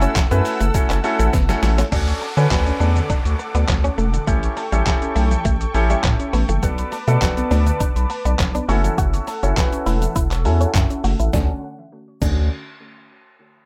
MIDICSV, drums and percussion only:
0, 0, Header, 1, 2, 480
1, 0, Start_track
1, 0, Key_signature, 2, "major"
1, 0, Tempo, 588235
1, 1568, Time_signature, 4, 2, 24, 8
1, 11143, End_track
2, 0, Start_track
2, 0, Title_t, "Drums"
2, 13, Note_on_c, 9, 42, 58
2, 13, Note_on_c, 9, 82, 81
2, 16, Note_off_c, 9, 82, 0
2, 16, Note_on_c, 9, 82, 52
2, 95, Note_off_c, 9, 42, 0
2, 98, Note_off_c, 9, 82, 0
2, 126, Note_on_c, 9, 38, 95
2, 127, Note_on_c, 9, 36, 127
2, 128, Note_on_c, 9, 39, 115
2, 128, Note_on_c, 9, 82, 75
2, 129, Note_off_c, 9, 82, 0
2, 129, Note_on_c, 9, 42, 79
2, 129, Note_on_c, 9, 82, 83
2, 207, Note_off_c, 9, 38, 0
2, 208, Note_off_c, 9, 36, 0
2, 210, Note_off_c, 9, 39, 0
2, 210, Note_off_c, 9, 42, 0
2, 210, Note_off_c, 9, 82, 0
2, 255, Note_on_c, 9, 42, 52
2, 255, Note_on_c, 9, 82, 51
2, 256, Note_off_c, 9, 82, 0
2, 256, Note_on_c, 9, 82, 59
2, 337, Note_off_c, 9, 42, 0
2, 337, Note_off_c, 9, 82, 0
2, 368, Note_on_c, 9, 46, 84
2, 368, Note_on_c, 9, 82, 62
2, 369, Note_off_c, 9, 82, 0
2, 369, Note_on_c, 9, 82, 59
2, 450, Note_off_c, 9, 46, 0
2, 450, Note_off_c, 9, 82, 0
2, 493, Note_on_c, 9, 42, 57
2, 493, Note_on_c, 9, 82, 77
2, 494, Note_off_c, 9, 82, 0
2, 494, Note_on_c, 9, 82, 60
2, 575, Note_off_c, 9, 42, 0
2, 575, Note_off_c, 9, 82, 0
2, 606, Note_on_c, 9, 42, 83
2, 606, Note_on_c, 9, 82, 84
2, 607, Note_on_c, 9, 36, 114
2, 608, Note_off_c, 9, 82, 0
2, 608, Note_on_c, 9, 82, 88
2, 688, Note_off_c, 9, 42, 0
2, 689, Note_off_c, 9, 36, 0
2, 689, Note_off_c, 9, 82, 0
2, 733, Note_on_c, 9, 39, 77
2, 736, Note_on_c, 9, 42, 64
2, 736, Note_on_c, 9, 82, 59
2, 737, Note_off_c, 9, 82, 0
2, 737, Note_on_c, 9, 82, 50
2, 814, Note_off_c, 9, 39, 0
2, 817, Note_off_c, 9, 42, 0
2, 818, Note_off_c, 9, 82, 0
2, 847, Note_on_c, 9, 46, 76
2, 847, Note_on_c, 9, 82, 54
2, 929, Note_off_c, 9, 46, 0
2, 929, Note_off_c, 9, 82, 0
2, 974, Note_on_c, 9, 42, 58
2, 974, Note_on_c, 9, 82, 80
2, 977, Note_off_c, 9, 82, 0
2, 977, Note_on_c, 9, 82, 50
2, 1056, Note_off_c, 9, 42, 0
2, 1059, Note_off_c, 9, 82, 0
2, 1087, Note_on_c, 9, 42, 64
2, 1087, Note_on_c, 9, 82, 68
2, 1088, Note_on_c, 9, 38, 65
2, 1089, Note_off_c, 9, 82, 0
2, 1089, Note_on_c, 9, 36, 127
2, 1089, Note_on_c, 9, 82, 74
2, 1169, Note_off_c, 9, 38, 0
2, 1169, Note_off_c, 9, 42, 0
2, 1171, Note_off_c, 9, 36, 0
2, 1171, Note_off_c, 9, 82, 0
2, 1215, Note_on_c, 9, 82, 55
2, 1216, Note_on_c, 9, 38, 71
2, 1217, Note_off_c, 9, 82, 0
2, 1217, Note_on_c, 9, 42, 48
2, 1217, Note_on_c, 9, 82, 50
2, 1297, Note_off_c, 9, 38, 0
2, 1299, Note_off_c, 9, 42, 0
2, 1299, Note_off_c, 9, 82, 0
2, 1328, Note_on_c, 9, 38, 107
2, 1328, Note_on_c, 9, 82, 56
2, 1329, Note_off_c, 9, 82, 0
2, 1329, Note_on_c, 9, 46, 83
2, 1329, Note_on_c, 9, 82, 61
2, 1410, Note_off_c, 9, 38, 0
2, 1410, Note_off_c, 9, 46, 0
2, 1410, Note_off_c, 9, 82, 0
2, 1455, Note_on_c, 9, 38, 101
2, 1455, Note_on_c, 9, 42, 58
2, 1455, Note_on_c, 9, 82, 80
2, 1458, Note_off_c, 9, 82, 0
2, 1458, Note_on_c, 9, 82, 52
2, 1536, Note_off_c, 9, 42, 0
2, 1537, Note_off_c, 9, 38, 0
2, 1540, Note_off_c, 9, 82, 0
2, 1568, Note_on_c, 9, 36, 102
2, 1568, Note_on_c, 9, 42, 72
2, 1568, Note_on_c, 9, 49, 95
2, 1568, Note_on_c, 9, 82, 72
2, 1649, Note_off_c, 9, 42, 0
2, 1649, Note_off_c, 9, 49, 0
2, 1649, Note_off_c, 9, 82, 0
2, 1650, Note_off_c, 9, 36, 0
2, 1694, Note_on_c, 9, 42, 52
2, 1694, Note_on_c, 9, 82, 51
2, 1775, Note_off_c, 9, 42, 0
2, 1775, Note_off_c, 9, 82, 0
2, 1806, Note_on_c, 9, 82, 41
2, 1888, Note_off_c, 9, 82, 0
2, 1934, Note_on_c, 9, 42, 55
2, 1934, Note_on_c, 9, 82, 80
2, 2016, Note_off_c, 9, 42, 0
2, 2016, Note_off_c, 9, 82, 0
2, 2046, Note_on_c, 9, 38, 88
2, 2047, Note_on_c, 9, 36, 122
2, 2049, Note_on_c, 9, 39, 106
2, 2049, Note_on_c, 9, 42, 75
2, 2049, Note_on_c, 9, 82, 75
2, 2128, Note_off_c, 9, 38, 0
2, 2129, Note_off_c, 9, 36, 0
2, 2130, Note_off_c, 9, 39, 0
2, 2130, Note_off_c, 9, 42, 0
2, 2130, Note_off_c, 9, 82, 0
2, 2175, Note_on_c, 9, 42, 49
2, 2175, Note_on_c, 9, 82, 48
2, 2257, Note_off_c, 9, 42, 0
2, 2257, Note_off_c, 9, 82, 0
2, 2289, Note_on_c, 9, 82, 57
2, 2371, Note_off_c, 9, 82, 0
2, 2415, Note_on_c, 9, 42, 53
2, 2415, Note_on_c, 9, 82, 75
2, 2496, Note_off_c, 9, 42, 0
2, 2496, Note_off_c, 9, 82, 0
2, 2527, Note_on_c, 9, 42, 72
2, 2527, Note_on_c, 9, 82, 77
2, 2528, Note_on_c, 9, 36, 106
2, 2609, Note_off_c, 9, 36, 0
2, 2609, Note_off_c, 9, 42, 0
2, 2609, Note_off_c, 9, 82, 0
2, 2656, Note_on_c, 9, 42, 58
2, 2656, Note_on_c, 9, 82, 59
2, 2737, Note_off_c, 9, 42, 0
2, 2737, Note_off_c, 9, 82, 0
2, 2768, Note_on_c, 9, 82, 55
2, 2849, Note_off_c, 9, 82, 0
2, 2895, Note_on_c, 9, 42, 58
2, 2895, Note_on_c, 9, 82, 78
2, 2976, Note_off_c, 9, 42, 0
2, 2976, Note_off_c, 9, 82, 0
2, 3003, Note_on_c, 9, 38, 94
2, 3006, Note_on_c, 9, 39, 116
2, 3008, Note_on_c, 9, 42, 61
2, 3008, Note_on_c, 9, 82, 60
2, 3009, Note_on_c, 9, 36, 116
2, 3085, Note_off_c, 9, 38, 0
2, 3087, Note_off_c, 9, 39, 0
2, 3090, Note_off_c, 9, 42, 0
2, 3090, Note_off_c, 9, 82, 0
2, 3091, Note_off_c, 9, 36, 0
2, 3137, Note_on_c, 9, 42, 47
2, 3137, Note_on_c, 9, 82, 47
2, 3219, Note_off_c, 9, 42, 0
2, 3219, Note_off_c, 9, 82, 0
2, 3250, Note_on_c, 9, 82, 56
2, 3331, Note_off_c, 9, 82, 0
2, 3375, Note_on_c, 9, 42, 53
2, 3375, Note_on_c, 9, 82, 77
2, 3457, Note_off_c, 9, 42, 0
2, 3457, Note_off_c, 9, 82, 0
2, 3488, Note_on_c, 9, 36, 109
2, 3488, Note_on_c, 9, 42, 71
2, 3488, Note_on_c, 9, 82, 74
2, 3570, Note_off_c, 9, 36, 0
2, 3570, Note_off_c, 9, 42, 0
2, 3570, Note_off_c, 9, 82, 0
2, 3615, Note_on_c, 9, 42, 51
2, 3615, Note_on_c, 9, 82, 54
2, 3696, Note_off_c, 9, 42, 0
2, 3696, Note_off_c, 9, 82, 0
2, 3727, Note_on_c, 9, 46, 57
2, 3727, Note_on_c, 9, 82, 42
2, 3809, Note_off_c, 9, 46, 0
2, 3809, Note_off_c, 9, 82, 0
2, 3854, Note_on_c, 9, 42, 53
2, 3854, Note_on_c, 9, 82, 76
2, 3936, Note_off_c, 9, 42, 0
2, 3936, Note_off_c, 9, 82, 0
2, 3966, Note_on_c, 9, 38, 85
2, 3967, Note_on_c, 9, 36, 121
2, 3969, Note_on_c, 9, 39, 107
2, 3969, Note_on_c, 9, 42, 79
2, 3969, Note_on_c, 9, 82, 74
2, 4048, Note_off_c, 9, 38, 0
2, 4049, Note_off_c, 9, 36, 0
2, 4051, Note_off_c, 9, 39, 0
2, 4051, Note_off_c, 9, 42, 0
2, 4051, Note_off_c, 9, 82, 0
2, 4096, Note_on_c, 9, 42, 47
2, 4096, Note_on_c, 9, 82, 49
2, 4177, Note_off_c, 9, 42, 0
2, 4177, Note_off_c, 9, 82, 0
2, 4209, Note_on_c, 9, 46, 80
2, 4209, Note_on_c, 9, 82, 59
2, 4290, Note_off_c, 9, 46, 0
2, 4290, Note_off_c, 9, 82, 0
2, 4334, Note_on_c, 9, 42, 52
2, 4334, Note_on_c, 9, 82, 78
2, 4416, Note_off_c, 9, 42, 0
2, 4416, Note_off_c, 9, 82, 0
2, 4447, Note_on_c, 9, 42, 75
2, 4447, Note_on_c, 9, 82, 78
2, 4448, Note_on_c, 9, 36, 109
2, 4528, Note_off_c, 9, 42, 0
2, 4528, Note_off_c, 9, 82, 0
2, 4529, Note_off_c, 9, 36, 0
2, 4576, Note_on_c, 9, 42, 57
2, 4576, Note_on_c, 9, 82, 55
2, 4658, Note_off_c, 9, 42, 0
2, 4658, Note_off_c, 9, 82, 0
2, 4687, Note_on_c, 9, 46, 73
2, 4687, Note_on_c, 9, 82, 52
2, 4769, Note_off_c, 9, 46, 0
2, 4769, Note_off_c, 9, 82, 0
2, 4814, Note_on_c, 9, 42, 54
2, 4814, Note_on_c, 9, 82, 80
2, 4895, Note_off_c, 9, 42, 0
2, 4895, Note_off_c, 9, 82, 0
2, 4923, Note_on_c, 9, 38, 93
2, 4926, Note_on_c, 9, 39, 123
2, 4928, Note_on_c, 9, 42, 62
2, 4928, Note_on_c, 9, 82, 59
2, 4929, Note_on_c, 9, 36, 121
2, 5005, Note_off_c, 9, 38, 0
2, 5007, Note_off_c, 9, 39, 0
2, 5009, Note_off_c, 9, 42, 0
2, 5009, Note_off_c, 9, 82, 0
2, 5011, Note_off_c, 9, 36, 0
2, 5057, Note_on_c, 9, 42, 48
2, 5057, Note_on_c, 9, 82, 50
2, 5138, Note_off_c, 9, 42, 0
2, 5138, Note_off_c, 9, 82, 0
2, 5169, Note_on_c, 9, 46, 84
2, 5169, Note_on_c, 9, 82, 58
2, 5250, Note_off_c, 9, 46, 0
2, 5250, Note_off_c, 9, 82, 0
2, 5294, Note_on_c, 9, 42, 56
2, 5294, Note_on_c, 9, 82, 76
2, 5376, Note_off_c, 9, 42, 0
2, 5376, Note_off_c, 9, 82, 0
2, 5408, Note_on_c, 9, 36, 111
2, 5408, Note_on_c, 9, 42, 76
2, 5408, Note_on_c, 9, 82, 68
2, 5489, Note_off_c, 9, 42, 0
2, 5490, Note_off_c, 9, 36, 0
2, 5490, Note_off_c, 9, 82, 0
2, 5534, Note_on_c, 9, 42, 53
2, 5534, Note_on_c, 9, 82, 54
2, 5535, Note_off_c, 9, 82, 0
2, 5535, Note_on_c, 9, 82, 42
2, 5615, Note_off_c, 9, 42, 0
2, 5617, Note_off_c, 9, 82, 0
2, 5646, Note_on_c, 9, 46, 61
2, 5646, Note_on_c, 9, 82, 43
2, 5648, Note_off_c, 9, 82, 0
2, 5648, Note_on_c, 9, 82, 55
2, 5728, Note_off_c, 9, 46, 0
2, 5730, Note_off_c, 9, 82, 0
2, 5774, Note_on_c, 9, 42, 55
2, 5774, Note_on_c, 9, 82, 76
2, 5778, Note_off_c, 9, 82, 0
2, 5778, Note_on_c, 9, 82, 49
2, 5855, Note_off_c, 9, 42, 0
2, 5859, Note_off_c, 9, 82, 0
2, 5886, Note_on_c, 9, 38, 86
2, 5887, Note_on_c, 9, 36, 121
2, 5888, Note_on_c, 9, 39, 108
2, 5889, Note_on_c, 9, 42, 77
2, 5889, Note_on_c, 9, 82, 68
2, 5967, Note_off_c, 9, 38, 0
2, 5969, Note_off_c, 9, 36, 0
2, 5970, Note_off_c, 9, 39, 0
2, 5970, Note_off_c, 9, 42, 0
2, 5970, Note_off_c, 9, 82, 0
2, 6016, Note_on_c, 9, 42, 50
2, 6016, Note_on_c, 9, 82, 50
2, 6017, Note_off_c, 9, 82, 0
2, 6017, Note_on_c, 9, 82, 58
2, 6097, Note_off_c, 9, 42, 0
2, 6098, Note_off_c, 9, 82, 0
2, 6128, Note_on_c, 9, 82, 54
2, 6129, Note_off_c, 9, 82, 0
2, 6129, Note_on_c, 9, 46, 79
2, 6129, Note_on_c, 9, 82, 58
2, 6210, Note_off_c, 9, 46, 0
2, 6210, Note_off_c, 9, 82, 0
2, 6254, Note_on_c, 9, 42, 53
2, 6254, Note_on_c, 9, 82, 75
2, 6255, Note_off_c, 9, 82, 0
2, 6255, Note_on_c, 9, 82, 58
2, 6336, Note_off_c, 9, 42, 0
2, 6336, Note_off_c, 9, 82, 0
2, 6368, Note_on_c, 9, 36, 106
2, 6368, Note_on_c, 9, 42, 76
2, 6368, Note_on_c, 9, 82, 82
2, 6449, Note_off_c, 9, 42, 0
2, 6449, Note_off_c, 9, 82, 0
2, 6450, Note_off_c, 9, 36, 0
2, 6497, Note_on_c, 9, 42, 59
2, 6497, Note_on_c, 9, 82, 47
2, 6578, Note_off_c, 9, 42, 0
2, 6579, Note_off_c, 9, 82, 0
2, 6608, Note_on_c, 9, 46, 73
2, 6608, Note_on_c, 9, 82, 51
2, 6690, Note_off_c, 9, 46, 0
2, 6690, Note_off_c, 9, 82, 0
2, 6735, Note_on_c, 9, 42, 59
2, 6735, Note_on_c, 9, 82, 75
2, 6737, Note_off_c, 9, 82, 0
2, 6737, Note_on_c, 9, 82, 47
2, 6817, Note_off_c, 9, 42, 0
2, 6818, Note_off_c, 9, 82, 0
2, 6843, Note_on_c, 9, 38, 93
2, 6846, Note_on_c, 9, 39, 120
2, 6848, Note_on_c, 9, 42, 63
2, 6848, Note_on_c, 9, 82, 61
2, 6850, Note_off_c, 9, 82, 0
2, 6850, Note_on_c, 9, 36, 119
2, 6850, Note_on_c, 9, 82, 71
2, 6925, Note_off_c, 9, 38, 0
2, 6928, Note_off_c, 9, 39, 0
2, 6930, Note_off_c, 9, 42, 0
2, 6931, Note_off_c, 9, 36, 0
2, 6931, Note_off_c, 9, 82, 0
2, 6975, Note_on_c, 9, 82, 52
2, 6977, Note_off_c, 9, 82, 0
2, 6977, Note_on_c, 9, 42, 46
2, 6977, Note_on_c, 9, 82, 47
2, 7059, Note_off_c, 9, 42, 0
2, 7059, Note_off_c, 9, 82, 0
2, 7090, Note_on_c, 9, 46, 83
2, 7090, Note_on_c, 9, 82, 58
2, 7172, Note_off_c, 9, 46, 0
2, 7172, Note_off_c, 9, 82, 0
2, 7215, Note_on_c, 9, 42, 55
2, 7215, Note_on_c, 9, 82, 77
2, 7218, Note_off_c, 9, 82, 0
2, 7218, Note_on_c, 9, 82, 49
2, 7297, Note_off_c, 9, 42, 0
2, 7299, Note_off_c, 9, 82, 0
2, 7328, Note_on_c, 9, 36, 111
2, 7328, Note_on_c, 9, 82, 70
2, 7329, Note_off_c, 9, 82, 0
2, 7329, Note_on_c, 9, 42, 72
2, 7329, Note_on_c, 9, 82, 75
2, 7410, Note_off_c, 9, 36, 0
2, 7410, Note_off_c, 9, 42, 0
2, 7410, Note_off_c, 9, 82, 0
2, 7455, Note_on_c, 9, 42, 55
2, 7455, Note_on_c, 9, 82, 52
2, 7536, Note_off_c, 9, 42, 0
2, 7536, Note_off_c, 9, 82, 0
2, 7567, Note_on_c, 9, 46, 63
2, 7567, Note_on_c, 9, 82, 45
2, 7568, Note_off_c, 9, 82, 0
2, 7568, Note_on_c, 9, 82, 53
2, 7648, Note_off_c, 9, 46, 0
2, 7649, Note_off_c, 9, 82, 0
2, 7695, Note_on_c, 9, 42, 54
2, 7695, Note_on_c, 9, 82, 80
2, 7697, Note_off_c, 9, 82, 0
2, 7697, Note_on_c, 9, 82, 51
2, 7776, Note_off_c, 9, 42, 0
2, 7779, Note_off_c, 9, 82, 0
2, 7807, Note_on_c, 9, 36, 127
2, 7807, Note_on_c, 9, 38, 85
2, 7809, Note_on_c, 9, 39, 109
2, 7809, Note_on_c, 9, 42, 78
2, 7809, Note_on_c, 9, 82, 80
2, 7888, Note_off_c, 9, 38, 0
2, 7889, Note_off_c, 9, 36, 0
2, 7891, Note_off_c, 9, 39, 0
2, 7891, Note_off_c, 9, 42, 0
2, 7891, Note_off_c, 9, 82, 0
2, 7936, Note_on_c, 9, 42, 50
2, 7936, Note_on_c, 9, 82, 50
2, 7937, Note_off_c, 9, 82, 0
2, 7937, Note_on_c, 9, 82, 58
2, 8017, Note_off_c, 9, 42, 0
2, 8019, Note_off_c, 9, 82, 0
2, 8049, Note_on_c, 9, 46, 81
2, 8049, Note_on_c, 9, 82, 60
2, 8050, Note_off_c, 9, 82, 0
2, 8050, Note_on_c, 9, 82, 55
2, 8131, Note_off_c, 9, 46, 0
2, 8131, Note_off_c, 9, 82, 0
2, 8175, Note_on_c, 9, 42, 56
2, 8175, Note_on_c, 9, 82, 77
2, 8257, Note_off_c, 9, 42, 0
2, 8257, Note_off_c, 9, 82, 0
2, 8288, Note_on_c, 9, 36, 108
2, 8288, Note_on_c, 9, 42, 78
2, 8288, Note_on_c, 9, 82, 84
2, 8370, Note_off_c, 9, 36, 0
2, 8370, Note_off_c, 9, 42, 0
2, 8370, Note_off_c, 9, 82, 0
2, 8414, Note_on_c, 9, 39, 71
2, 8417, Note_on_c, 9, 42, 58
2, 8417, Note_on_c, 9, 82, 59
2, 8418, Note_off_c, 9, 82, 0
2, 8418, Note_on_c, 9, 82, 49
2, 8495, Note_off_c, 9, 39, 0
2, 8498, Note_off_c, 9, 42, 0
2, 8500, Note_off_c, 9, 82, 0
2, 8528, Note_on_c, 9, 46, 78
2, 8528, Note_on_c, 9, 82, 56
2, 8610, Note_off_c, 9, 46, 0
2, 8610, Note_off_c, 9, 82, 0
2, 8655, Note_on_c, 9, 42, 58
2, 8655, Note_on_c, 9, 82, 76
2, 8658, Note_off_c, 9, 82, 0
2, 8658, Note_on_c, 9, 82, 48
2, 8737, Note_off_c, 9, 42, 0
2, 8739, Note_off_c, 9, 82, 0
2, 8764, Note_on_c, 9, 38, 93
2, 8766, Note_on_c, 9, 39, 120
2, 8769, Note_on_c, 9, 42, 64
2, 8769, Note_on_c, 9, 82, 64
2, 8770, Note_off_c, 9, 82, 0
2, 8770, Note_on_c, 9, 36, 118
2, 8770, Note_on_c, 9, 82, 71
2, 8846, Note_off_c, 9, 38, 0
2, 8848, Note_off_c, 9, 39, 0
2, 8850, Note_off_c, 9, 42, 0
2, 8851, Note_off_c, 9, 36, 0
2, 8851, Note_off_c, 9, 82, 0
2, 8896, Note_on_c, 9, 82, 49
2, 8898, Note_off_c, 9, 82, 0
2, 8898, Note_on_c, 9, 42, 48
2, 8898, Note_on_c, 9, 82, 49
2, 8979, Note_off_c, 9, 42, 0
2, 8979, Note_off_c, 9, 82, 0
2, 9010, Note_on_c, 9, 46, 85
2, 9010, Note_on_c, 9, 82, 59
2, 9092, Note_off_c, 9, 46, 0
2, 9092, Note_off_c, 9, 82, 0
2, 9136, Note_on_c, 9, 42, 55
2, 9136, Note_on_c, 9, 82, 77
2, 9138, Note_off_c, 9, 82, 0
2, 9138, Note_on_c, 9, 82, 51
2, 9217, Note_off_c, 9, 42, 0
2, 9219, Note_off_c, 9, 82, 0
2, 9249, Note_on_c, 9, 36, 105
2, 9249, Note_on_c, 9, 38, 85
2, 9249, Note_on_c, 9, 82, 84
2, 9330, Note_off_c, 9, 36, 0
2, 9330, Note_off_c, 9, 38, 0
2, 9330, Note_off_c, 9, 82, 0
2, 9968, Note_on_c, 9, 36, 108
2, 9968, Note_on_c, 9, 82, 84
2, 9969, Note_on_c, 9, 49, 90
2, 10050, Note_off_c, 9, 36, 0
2, 10050, Note_off_c, 9, 49, 0
2, 10050, Note_off_c, 9, 82, 0
2, 11143, End_track
0, 0, End_of_file